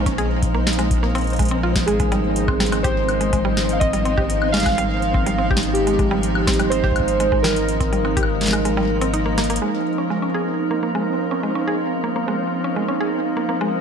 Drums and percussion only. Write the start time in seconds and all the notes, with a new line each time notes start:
0.06 kick, closed hi-hat
0.18 closed hi-hat
0.42 kick, closed hi-hat
0.67 snare, closed hi-hat
0.73 closed hi-hat
0.79 closed hi-hat
0.91 kick, closed hi-hat
1.15 closed hi-hat
1.18 closed hi-hat
1.21 closed hi-hat
1.24 closed hi-hat
1.27 closed hi-hat
1.30 closed hi-hat
1.33 closed hi-hat
1.36 kick, closed hi-hat
1.39 closed hi-hat
1.42 closed hi-hat
1.45 closed hi-hat
1.48 closed hi-hat
1.76 kick, snare, closed hi-hat
1.88 closed hi-hat
2.00 kick, closed hi-hat
2.12 closed hi-hat
2.36 closed hi-hat
2.48 kick, high woodblock
2.60 snare
2.66 closed hi-hat
2.72 closed hi-hat, high woodblock
2.84 kick, closed hi-hat
3.09 closed hi-hat, high woodblock
3.21 closed hi-hat
3.33 kick, closed hi-hat
3.57 snare
3.69 closed hi-hat
3.81 kick, closed hi-hat
3.93 closed hi-hat
4.05 closed hi-hat
4.17 kick, high woodblock
4.30 closed hi-hat
4.42 high woodblock
4.54 snare, closed hi-hat
4.57 snare
4.60 snare, closed hi-hat
4.63 kick, snare
4.66 snare, closed hi-hat, high woodblock
4.69 snare
4.72 snare
4.75 snare, closed hi-hat
5.02 closed hi-hat
5.14 kick
5.26 closed hi-hat
5.51 kick
5.57 snare
5.63 closed hi-hat
5.75 closed hi-hat
5.87 closed hi-hat
5.99 kick, closed hi-hat
6.23 closed hi-hat
6.35 high woodblock
6.47 kick, snare, closed hi-hat
6.53 closed hi-hat
6.60 closed hi-hat, high woodblock
6.72 closed hi-hat
6.84 kick
6.92 kick
6.96 kick, closed hi-hat, high woodblock
7.08 closed hi-hat
7.20 closed hi-hat
7.32 kick
7.44 snare
7.56 closed hi-hat
7.68 closed hi-hat
7.80 kick, closed hi-hat
7.93 closed hi-hat
8.05 high woodblock
8.17 kick, closed hi-hat
8.23 high woodblock
8.41 snare, closed hi-hat
8.43 snare
8.46 snare, closed hi-hat
8.48 snare
8.51 snare, closed hi-hat, high woodblock
8.65 closed hi-hat
9.01 closed hi-hat
9.14 closed hi-hat
9.38 snare, closed hi-hat
9.44 closed hi-hat
9.50 closed hi-hat
9.56 closed hi-hat